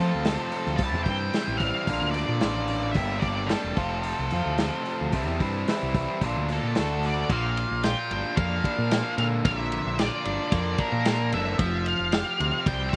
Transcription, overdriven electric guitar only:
0.00 0.26 F2 medium
0.00 0.26 C3 medium
0.00 0.26 F3 medium
0.00 0.27 A3 medium
0.00 0.27 C4 medium
0.00 0.28 F4 medium
0.27 0.79 F2 medium
0.27 0.80 C3 medium
0.27 0.80 F3 medium
0.27 0.80 A3 medium
0.27 0.80 C4 medium
0.27 0.80 F4 loud
0.82 1.36 C3 medium
0.82 1.34 E3 medium
0.82 1.09 G3 medium
0.82 1.08 C4 medium
0.82 1.08 E4 medium
1.09 1.35 G3 medium
1.09 1.35 C4 medium
1.09 1.36 E4 medium
1.35 1.88 E3 medium
1.35 1.63 G3 medium
1.35 1.62 C4 medium
1.35 1.61 E4 medium
1.62 1.89 G3 soft
1.62 1.88 C4 medium
1.62 1.88 E4 medium
1.89 2.40 A#2 medium
1.89 2.40 D3 medium
1.89 2.17 A#3 medium
1.89 2.15 D4 medium
1.89 2.14 F4 medium
2.15 2.41 A#3 medium
2.15 2.42 D4 medium
2.15 2.43 F4 medium
2.41 2.95 A#2 medium
2.41 2.94 D3 medium
2.41 2.95 A#3 medium
2.41 2.96 D4 medium
2.41 2.97 F4 medium
2.95 3.51 G2 medium
2.95 3.51 D3 medium
2.95 3.24 G3 medium
2.95 3.23 A#3 medium
2.95 3.22 D4 medium
2.95 3.21 G4 medium
3.22 3.48 G3 medium
3.22 3.49 A#3 medium
3.22 3.50 D4 medium
3.22 3.51 G4 medium
3.49 3.76 G3 medium
3.49 3.76 A#3 medium
3.49 3.77 D4 medium
3.49 3.77 G4 medium
3.78 4.58 F2 medium
3.78 4.59 C3 medium
3.78 4.34 F3 medium
3.78 4.34 A3 medium
3.78 4.33 C4 medium
3.78 4.32 F4 medium
4.33 4.60 F3 medium
4.33 4.60 A3 medium
4.33 4.61 C4 medium
4.33 4.61 F4 medium
4.59 5.12 F2 medium
4.59 5.13 C3 medium
4.59 5.13 F3 medium
4.59 5.13 A3 medium
4.59 5.14 C4 medium
4.59 5.14 F4 medium
5.15 5.69 C3 medium
5.15 5.67 E3 medium
5.15 5.43 G3 medium
5.15 5.41 C4 medium
5.15 5.41 E4 medium
5.42 5.69 G3 medium
5.42 5.69 C4 medium
5.42 5.70 E4 medium
5.68 6.21 E3 medium
5.68 5.97 G3 medium
5.68 5.96 C4 medium
5.68 5.94 E4 medium
5.96 6.23 G3 medium
5.96 6.22 C4 medium
5.96 6.21 E4 medium
6.24 6.75 A#2 medium
6.24 6.75 D3 medium
6.24 6.51 A#3 medium
6.24 6.50 D4 medium
6.24 6.49 F4 medium
6.50 6.76 A#3 medium
6.50 6.76 D4 medium
6.50 6.75 F4 medium
6.76 7.29 D3 medium
6.76 7.29 A3 medium
6.76 7.30 D4 medium
6.76 7.30 F#4 medium
7.29 8.64 A#2 medium
7.84 9.99 F4 medium
8.13 8.64 D4 medium
8.39 8.91 A#3 medium
8.65 9.99 D4 medium
8.93 10.26 A#3 medium
9.19 10.53 D3 medium
9.44 10.79 A#2 medium
9.99 11.33 F4 medium
10.25 10.77 D4 medium
10.52 11.06 A#3 medium
10.78 11.59 D4 medium
11.07 11.61 A#3 medium
11.33 11.58 D3 medium
11.58 12.93 F3 medium
12.14 12.96 G4 medium
12.41 12.94 C4 medium
12.67 12.96 G3 medium

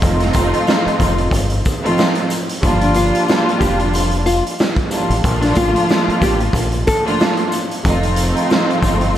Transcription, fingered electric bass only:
0.02 0.32 F1 loud
0.35 0.51 F1 medium
0.86 muted fingered electric bass stroke medium
1.00 1.29 F1 loud
1.32 1.61 G1 loud
2.63 3.10 G1 loud
3.61 4.40 F1 loud
5.10 5.23 A1 loud
5.24 5.54 A#1 loud
5.57 5.73 A1 medium
6.08 muted fingered electric bass stroke medium
6.22 6.51 A1 loud
6.54 6.83 A#1 medium
7.85 8.32 F1 loud
8.83 9.18 G1 medium

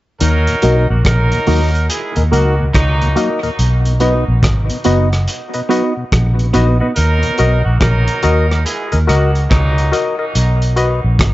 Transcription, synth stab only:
0.62 0.86 F#4 medium
0.62 0.86 A#4 medium
0.62 0.86 D#5 loud
1.47 1.70 F#4 loud
1.47 1.71 A#4 medium
1.47 1.71 D#5 loud
2.16 2.23 A#4 soft
2.16 2.23 D#5 soft
2.31 2.55 F#4 medium
2.31 2.55 A#4 medium
2.31 2.56 D#5 loud
3.16 3.39 F#4 medium
3.16 3.40 A#4 medium
3.16 3.40 D#5 medium
3.43 3.49 A#4 soft
3.43 3.49 D#5 soft
4.00 4.24 F#4 medium
4.00 4.24 B4 medium
4.00 4.24 D#5 loud
4.85 5.08 F#4 loud
4.85 5.09 B4 medium
4.85 5.09 D#5 loud
5.54 5.60 B4 soft
5.54 5.60 D#5 soft
5.69 5.93 F#4 medium
5.69 5.93 B4 medium
5.69 5.94 D#5 loud
6.54 6.77 F#4 medium
6.54 6.78 B4 medium
6.54 6.78 D#5 loud
6.81 6.87 B4 soft
6.81 6.87 D#5 soft
7.38 7.62 F#4 medium
7.38 7.62 A#4 medium
7.38 7.63 D#5 loud
8.23 8.46 F#4 loud
8.23 8.47 A#4 medium
8.23 8.47 D#5 loud
8.92 8.99 A#4 soft
8.92 8.99 D#5 soft
9.07 9.31 F#4 medium
9.07 9.31 A#4 medium
9.07 9.31 D#5 loud
9.92 10.15 F#4 medium
9.92 10.16 A#4 medium
9.92 10.16 D#5 loud
10.19 10.25 A#4 soft
10.19 10.25 D#5 soft
10.76 11.00 F#4 medium
10.76 11.00 B4 medium
10.76 11.01 D#5 loud

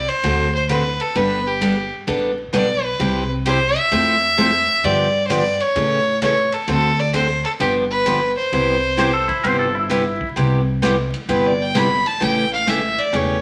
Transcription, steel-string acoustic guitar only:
0.24 0.46 D3 medium
0.24 0.47 A3 medium
0.24 0.47 C4 medium
0.24 0.47 F#4 medium
0.24 0.47 A4 medium
0.70 0.82 D3 medium
0.70 0.82 A3 medium
0.70 0.82 C4 medium
0.70 0.82 F#4 medium
0.70 0.82 A4 medium
1.16 1.38 G3 medium
1.16 1.39 B3 medium
1.16 1.39 D4 medium
1.16 1.39 A4 medium
1.61 1.73 G3 medium
1.61 1.74 B3 medium
1.61 1.74 D4 medium
1.61 1.74 A4 medium
2.07 2.30 G3 medium
2.07 2.30 B3 medium
2.07 2.30 D4 medium
2.07 2.31 A4 medium
2.53 2.65 G3 medium
2.53 2.66 B3 medium
2.53 2.66 D4 medium
2.53 2.66 A4 medium
2.99 3.22 C3 medium
2.99 3.22 G3 medium
2.99 3.23 C4 medium
2.99 3.23 E4 medium
2.99 3.23 G4 medium
3.45 3.58 C3 medium
3.45 3.58 G3 medium
3.45 3.58 C4 medium
3.45 3.58 E4 medium
3.45 3.58 G4 medium
3.92 4.14 F3 medium
3.92 4.15 A3 medium
3.92 4.15 C4 medium
3.92 4.15 E4 medium
3.92 4.15 A4 medium
4.38 4.50 F3 medium
4.38 4.50 A3 medium
4.38 4.50 C4 medium
4.38 4.50 E4 medium
4.38 4.50 A4 medium
4.84 5.06 D3 medium
4.84 5.07 F3 medium
4.84 5.07 B3 medium
4.84 5.07 D4 medium
4.84 5.07 G4 medium
5.30 5.42 D3 medium
5.30 5.42 F3 medium
5.30 5.42 B3 medium
5.30 5.42 D4 medium
5.30 5.42 G4 medium
5.76 5.98 C#3 medium
5.76 5.99 E3 medium
5.76 5.99 A3 medium
5.76 5.99 C#4 medium
5.76 5.99 A4 medium
6.22 6.34 C#3 medium
6.22 6.34 E3 medium
6.22 6.34 A3 medium
6.22 6.34 C#4 medium
6.22 6.35 A4 medium
6.68 6.90 D3 medium
6.68 6.91 A3 medium
6.68 6.91 C4 medium
6.68 6.91 F#4 medium
6.68 6.91 A4 medium
7.13 7.26 D3 medium
7.13 7.26 A3 medium
7.13 7.26 C4 medium
7.13 7.26 F#4 medium
7.13 7.26 A4 medium
7.60 7.83 D3 medium
7.60 7.83 F3 medium
7.60 7.83 B3 medium
7.60 7.83 D4 medium
7.60 7.83 G4 medium
8.06 8.18 D3 medium
8.06 8.18 F3 medium
8.06 8.18 B3 medium
8.06 8.18 D4 medium
8.06 8.19 G4 medium
8.52 8.75 C3 medium
8.52 8.75 G3 medium
8.52 8.75 B3 medium
8.52 8.75 E4 medium
8.52 8.75 G4 medium
8.97 9.10 C3 medium
8.97 9.10 G3 medium
8.97 9.10 B3 medium
8.97 9.10 E4 medium
8.97 9.10 G4 medium
9.43 9.67 C3 medium
9.43 9.67 G3 medium
9.43 9.67 B3 medium
9.43 9.67 E4 medium
9.43 9.67 G4 medium
9.90 10.02 C3 medium
9.90 10.02 G3 medium
9.90 10.02 B3 medium
9.90 10.03 E4 medium
9.90 10.03 G4 medium
10.36 10.59 C3 medium
10.36 10.59 G3 medium
10.36 10.59 B3 medium
10.36 10.59 E4 medium
10.36 10.60 G4 medium
10.82 10.94 C3 medium
10.82 10.95 G3 medium
10.82 10.94 B3 medium
10.82 10.95 E4 medium
10.82 10.95 G4 medium
11.29 11.51 C3 medium
11.29 11.51 G3 medium
11.29 11.51 B3 medium
11.29 11.52 E4 medium
11.29 11.52 G4 medium
11.74 11.87 C3 medium
11.74 11.87 G3 medium
11.74 11.87 B3 medium
11.74 11.87 E4 medium
11.74 11.87 G4 medium
12.20 12.43 C#3 medium
12.20 12.43 E3 medium
12.20 12.43 A3 medium
12.20 12.44 C#4 medium
12.20 12.43 G4 medium
12.66 12.79 C#3 medium
12.66 12.79 E3 medium
12.66 12.79 A3 medium
12.66 12.79 C#4 medium
12.66 12.79 G4 medium
13.12 13.35 C#3 medium
13.12 13.36 E3 medium
13.12 13.36 A3 medium
13.12 13.36 C#4 medium
13.12 13.36 G4 medium

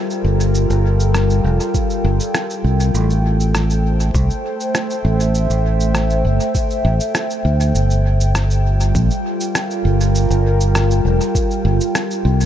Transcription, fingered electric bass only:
0.24 0.67 G1 medium
0.70 1.42 G1 medium
1.44 1.58 F1 medium
2.04 2.18 G1 loud
2.64 2.91 C2 medium
2.94 4.12 A1 medium
4.15 4.28 C2 medium
5.05 5.47 A1 loud
5.50 6.22 A1 medium
6.25 6.38 G1 medium
6.85 6.98 A1 loud
7.45 7.71 D2 medium
7.75 8.92 G1 medium
8.95 9.09 A#1 medium
9.85 10.27 G1 medium
10.30 11.02 G1 medium
11.05 11.18 F1 medium
11.65 11.78 G1 loud
12.25 12.46 C2 loud

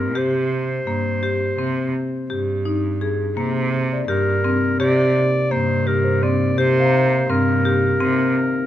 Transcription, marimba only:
0.15 0.55 G4 medium
0.87 1.07 A#3 medium
1.23 1.43 G4 medium
1.59 1.98 C4 medium
2.30 2.50 G4 medium
2.65 2.85 D#4 medium
3.01 3.21 G#4 medium
3.37 3.76 A#3 medium
4.08 4.28 G4 medium
4.44 4.64 C4 medium
4.80 5.19 G4 medium
5.51 5.71 A#3 medium
5.87 6.07 G4 medium
6.23 6.42 C4 medium
6.58 6.97 G4 medium
7.30 7.49 C4 medium
7.65 7.85 G4 medium
8.01 8.40 C4 medium

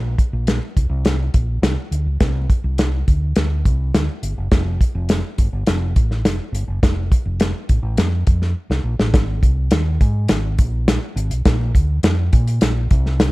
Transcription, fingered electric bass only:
0.00 0.14 A#1 medium
0.33 0.58 A#1 medium
0.77 0.89 C2 medium
0.89 1.28 C2 loud
1.34 1.59 A#1 medium
1.62 1.75 C2 medium
1.91 2.04 D2 medium
2.06 2.19 C#2 medium
2.21 2.46 C2 loud
2.64 3.02 C2 loud
3.07 3.33 D2 medium
3.36 3.62 D2 medium
3.65 3.91 C2 loud
3.94 4.07 D2 medium
4.23 4.36 G1 medium
4.37 4.50 F#1 medium
4.52 4.77 F1 loud
4.95 5.20 F1 loud
5.38 5.51 G1 medium
5.53 5.66 G1 medium
5.67 5.93 F1 loud
5.96 6.22 A1 medium
6.25 6.38 F1 medium
6.52 6.66 G1 medium
6.68 6.81 F#1 medium
6.83 7.08 F1 medium
7.25 7.51 F1 medium
7.69 7.82 A1 medium
7.83 7.96 A1 medium
7.98 8.23 F2 loud
8.27 8.53 F2 medium
8.70 8.83 C2 medium
8.84 8.97 A#1 medium
8.99 9.12 A1 medium
9.14 9.39 G#1 medium
9.42 9.68 C2 loud
9.71 9.97 D#2 loud
10.01 10.26 G#2 loud
10.30 10.55 G#1 loud
10.58 10.97 A#1 medium
11.16 11.29 G#1 medium
11.30 11.43 B1 medium
11.46 11.71 A#1 loud
11.74 12.00 D2 medium
12.03 12.29 F2 medium
12.33 12.58 A#2 loud
12.61 12.87 A#1 medium
12.91 13.29 C2 medium

